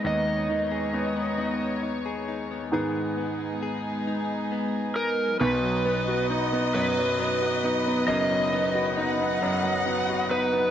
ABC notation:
X:1
M:6/8
L:1/16
Q:3/8=45
K:B
V:1 name="Violin section"
z12 | z12 | d12- | d4 f8 |]
V:2 name="Electric slide guitar"
d8 z4 | z8 z2 A2 | B4 z2 B6 | d8- d2 B2 |]
V:3 name="String section"
[G,B,Dc]12 | [G,B,DG]12 | [F,B,DB]12- | [F,B,DB]12 |]
V:4 name="Clean electric guitar"
[B,DG] B, D G D B, B, B, D G D B, | [B,G]2 B,2 G2 D2 B,2 D2 | F,2 B,2 D2 B,2 F,2 B,2 | F,2 B,2 D2 B,2 F,2 B,2 |]
V:5 name="Grand piano"
[D,,D]2 D,2 B,2 D6 | [G,,D,B,]6 z6 | [B,,,B,,] F, B, F D B, [F,,F,] F, B, F D B, | [F,,,F,,] F, B, F D B, [F,,F,] F, B, F D B, |]